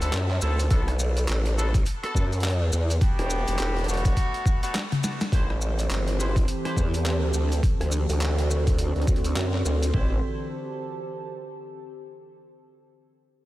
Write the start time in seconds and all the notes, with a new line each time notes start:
Already playing: D2
0.02 C4 E4 F#4 A4, closed hi-hat, maracas
0.13 F#2, clap, closed hi-hat, maracas
0.31 clap
0.41 D2 C4 E4 F#4 A4, maracas
0.59 closed hi-hat, maracas
0.70 B1 B3 D4 F#4 A4, kick, closed hi-hat, maracas
0.88 cross-stick, closed hi-hat
0.99 maracas
1.17 closed hi-hat, maracas
1.28 A1, clap, closed hi-hat, maracas
1.46 closed hi-hat
1.57 B3 D4 F#4 A4, maracas
1.74 kick, closed hi-hat, maracas
1.86 closed hi-hat, maracas
2.03 B3 D4 F#4 A4, cross-stick, closed hi-hat
2.15 F#2, kick, maracas
2.33 closed hi-hat, maracas
2.40 clap, closed hi-hat, maracas
2.44 closed hi-hat
2.50 closed hi-hat
2.73 E2, maracas
2.90 closed hi-hat, maracas
3.01 B3 D4 F#4 G4, kick, closed hi-hat, maracas
3.19 E1, cross-stick, closed hi-hat
3.30 maracas
3.48 E1, closed hi-hat, maracas
3.59 E1, clap, closed hi-hat, maracas
3.77 closed hi-hat
3.79 closed hi-hat
3.84 E1 A3 D4 F#4, closed hi-hat
3.88 B3, closed hi-hat, maracas
3.94 closed hi-hat
3.97 closed hi-hat
4.05 kick, closed hi-hat, maracas
4.17 kick, closed hi-hat, maracas
4.34 closed hi-hat
4.46 kick, maracas
4.63 A3 B3 D4 F#4, closed hi-hat, maracas
4.75 snare, clap, closed hi-hat, maracas
4.92 closed hi-hat, high tom
5.04 A3 B3 D4 F#4, snare, maracas
5.21 snare, closed hi-hat, maracas
5.31 A1 E3 C4 E4 G4 A4 B4 C5, kick, closed hi-hat, maracas
5.50 cross-stick
5.56 C5
5.61 maracas
5.79 A5, closed hi-hat, maracas
5.90 G1, clap, closed hi-hat, maracas
6.08 closed hi-hat
6.19 E4 G4 B4 C5, maracas
6.36 kick, closed hi-hat, maracas
6.48 closed hi-hat, maracas
6.65 E4 G4 B4 C5, cross-stick, closed hi-hat
6.76 E2, kick, maracas
6.94 closed hi-hat, maracas
7.06 clap, closed hi-hat, maracas
7.34 D2, maracas
7.52 closed hi-hat, maracas
7.63 D3 C4 F#4, kick, closed hi-hat, maracas
7.79 D2 D5, cross-stick, closed hi-hat
7.92 maracas
8.09 D2, closed hi-hat, maracas
8.21 clap, closed hi-hat, maracas
8.38 closed hi-hat
8.51 maracas
8.67 C6, kick, closed hi-hat, maracas
8.79 closed hi-hat, maracas
8.96 D2, closed hi-hat
9.02 closed hi-hat
9.07 D2, kick, closed hi-hat, maracas
9.16 closed hi-hat
9.24 closed hi-hat, maracas
9.36 F#2, clap, closed hi-hat, maracas
9.54 clap
9.65 D2, maracas
9.82 closed hi-hat, maracas
9.94 A1 E4 G4 B4 C5, kick, floor tom
10.05 C5
10.14 A5